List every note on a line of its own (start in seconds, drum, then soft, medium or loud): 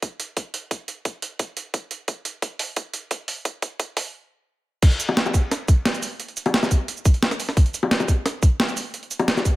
0.02 kick medium
0.02 closed hi-hat medium
0.20 closed hi-hat medium
0.37 kick medium
0.37 closed hi-hat medium
0.54 closed hi-hat medium
0.71 kick medium
0.71 closed hi-hat medium
0.88 closed hi-hat medium
1.05 kick medium
1.05 closed hi-hat medium
1.22 closed hi-hat medium
1.39 kick loud
1.39 closed hi-hat medium
1.57 closed hi-hat medium
1.74 kick loud
1.74 closed hi-hat medium
1.91 closed hi-hat medium
2.08 kick medium
2.08 closed hi-hat medium
2.25 closed hi-hat medium
2.42 kick loud
2.42 closed hi-hat medium
2.59 open hi-hat medium
2.76 kick loud
2.76 closed hi-hat medium
2.94 closed hi-hat medium
3.11 kick loud
3.11 closed hi-hat medium
3.28 open hi-hat medium
3.45 kick loud
3.45 closed hi-hat medium
3.62 kick loud
3.62 closed hi-hat medium
3.80 kick loud
3.80 closed hi-hat medium
3.97 kick loud
3.97 open hi-hat medium
4.82 kick loud
4.82 closed hi-hat loud
4.82 crash loud
4.91 closed hi-hat soft
5.00 closed hi-hat medium
5.00 cabasa medium
5.09 high bongo medium
5.17 snare loud
5.17 closed hi-hat loud
5.26 high bongo medium
5.26 cabasa soft
5.34 kick medium
5.34 closed hi-hat medium
5.34 cabasa medium
5.51 snare soft
5.51 closed hi-hat loud
5.68 kick loud
5.68 closed hi-hat medium
5.68 cabasa medium
5.85 snare loud
5.85 closed hi-hat loud
5.94 closed hi-hat soft
5.94 cabasa soft
6.03 open hi-hat medium
6.03 cabasa medium
6.20 closed hi-hat loud
6.28 closed hi-hat soft
6.37 closed hi-hat medium
6.37 cabasa medium
6.46 closed hi-hat soft
6.46 high bongo loud
6.54 snare loud
6.54 closed hi-hat medium
6.63 snare soft
6.63 high bongo medium
6.63 cabasa soft
6.71 kick medium
6.71 closed hi-hat medium
6.71 cabasa medium
6.88 closed hi-hat loud
6.97 cabasa soft
7.05 kick loud
7.05 closed hi-hat medium
7.05 cabasa medium
7.14 closed hi-hat soft
7.23 snare loud
7.23 closed hi-hat loud
7.31 snare medium
7.31 closed hi-hat soft
7.31 cabasa soft
7.40 open hi-hat medium
7.40 cabasa medium
7.49 snare soft
7.57 kick loud
7.57 closed hi-hat medium
7.66 closed hi-hat soft
7.74 closed hi-hat medium
7.74 cabasa medium
7.83 high bongo medium
7.91 snare loud
7.91 closed hi-hat medium
8.00 high bongo medium
8.00 cabasa soft
8.08 kick medium
8.08 closed hi-hat medium
8.08 cabasa medium
8.26 snare medium
8.26 closed hi-hat medium
8.43 kick loud
8.43 closed hi-hat medium
8.43 cabasa medium
8.60 snare loud
8.60 closed hi-hat medium
8.69 closed hi-hat soft
8.69 cabasa soft
8.77 open hi-hat medium
8.77 cabasa medium
8.94 closed hi-hat medium
9.03 closed hi-hat soft
9.11 closed hi-hat medium
9.11 cabasa medium
9.19 closed hi-hat soft
9.19 high bongo loud
9.28 snare loud
9.28 closed hi-hat medium
9.37 snare soft
9.37 high bongo medium
9.37 cabasa soft
9.45 kick medium
9.45 closed hi-hat medium
9.45 cabasa medium